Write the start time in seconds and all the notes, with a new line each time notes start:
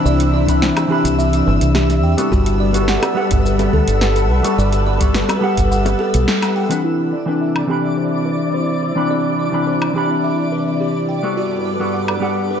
Already playing: C3 E3 C4 D4 E4 E5 B5 E6
0.05 C2 D5, shaker
0.20 closed hi-hat, shaker
0.34 D5
0.47 E3 C4 D4 B5, kick, closed hi-hat, shaker
0.62 C5, snare, shaker
0.77 closed hi-hat, high bongo, low woodblock, shaker
0.88 E3 C4 D4 G4
0.92 B5
1.05 C2, kick, closed hi-hat, shaker
1.19 E5, shaker
1.33 closed hi-hat, shaker
1.47 G1 B4
1.61 C2, closed hi-hat, shaker
1.75 G4, snare, shaker
1.90 snare, closed hi-hat, shaker
2.03 E2 G5
2.17 G3 B3 F#4 A4, closed hi-hat, high bongo, shaker
2.32 G1 G3 F#4 A4 B4 F#5, kick, shaker
2.46 closed hi-hat, shaker
2.60 D5
2.73 G3 B3 F#4 A4, closed hi-hat, shaker
2.88 F#5, snare, shaker
3.03 closed hi-hat, high bongo, low woodblock, shaker
3.14 G3 B3 G4 A4 F#5
3.31 G1, kick, closed hi-hat, shaker
3.45 B4, shaker
3.59 closed hi-hat, high bongo, shaker
3.73 D2 A4, kick
3.88 G1, closed hi-hat, shaker
4.01 B4, snare, shaker
4.16 closed hi-hat, shaker
4.30 B1 B4
4.43 G3 B3 F#4 A4, closed hi-hat, high bongo, shaker
4.58 G1 D5, shaker
4.72 closed hi-hat, shaker
4.86 D5
5.00 G3 B3 F#4 A4, kick, closed hi-hat, shaker
5.14 B4, snare, shaker
5.29 closed hi-hat, high bongo, low woodblock, shaker
5.41 G3 B3 G4 F#5
5.45 A4
5.57 G1, kick, closed hi-hat, shaker
5.72 F#5, shaker
5.86 closed hi-hat, high bongo, shaker
5.99 A4, high bongo
6.14 B1, closed hi-hat, shaker
6.28 G4, snare, shaker
6.42 snare, closed hi-hat, low woodblock, shaker
6.56 G5
6.69 E3 C4 D4 B4, closed hi-hat, high bongo, shaker
6.84 C3 E4 D5 D6
7.13 D5
7.26 E3 C4 D4 B4
7.41 E5
7.56 low woodblock
7.67 E3 C4 D4 G4
7.71 B5
7.97 C5
8.26 B4
8.54 C5
8.83 C5
8.96 E3 C4 D4 B5
9.11 D5
9.39 D5
9.52 E3 C4 D4 B5
9.67 C5
9.82 low woodblock
9.93 E3 C4 D4 G4
9.98 B5
10.24 E5
10.52 B4
10.81 G4
11.09 G5
11.23 G3 B3 F#4 A4
11.37 G2 F#4 A4 B4
11.65 D5
11.79 G3 B3 F#4 A4
11.93 F#5
12.08 low woodblock
12.20 G3 B3 G4 F#5
12.24 A4
12.51 B4